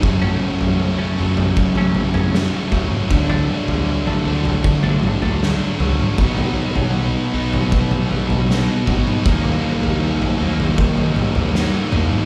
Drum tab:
SD |------------o---|------------o---|------------o---|------------o---|
T2 |---------------o|----------o----o|---------------o|----------o----o|
FT |oo-o---ooooo--o-|oo-o-o-ooooo--o-|oo-o---ooooo--o-|oo-o-o-ooooo--o-|
BD |o-------o-----o-|o-------o-------|o-------o-----o-|o-------o-------|